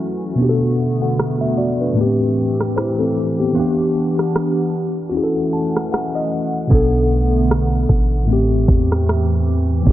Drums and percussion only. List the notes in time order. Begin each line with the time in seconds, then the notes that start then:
0.39 closed hi-hat
0.79 closed hi-hat
1.19 cross-stick, closed hi-hat
1.58 closed hi-hat
1.98 closed hi-hat
2.37 closed hi-hat
2.60 cross-stick
2.76 cross-stick, closed hi-hat
3.55 closed hi-hat
3.95 closed hi-hat
4.19 cross-stick
4.35 cross-stick, closed hi-hat
4.74 closed hi-hat
5.14 closed hi-hat
5.53 closed hi-hat
5.76 cross-stick
5.92 cross-stick, closed hi-hat
6.71 kick, closed hi-hat
7.11 closed hi-hat
7.50 cross-stick, closed hi-hat
7.89 kick, closed hi-hat
8.29 closed hi-hat
8.68 kick, closed hi-hat
8.92 cross-stick
9.08 cross-stick, closed hi-hat
9.86 kick, closed hi-hat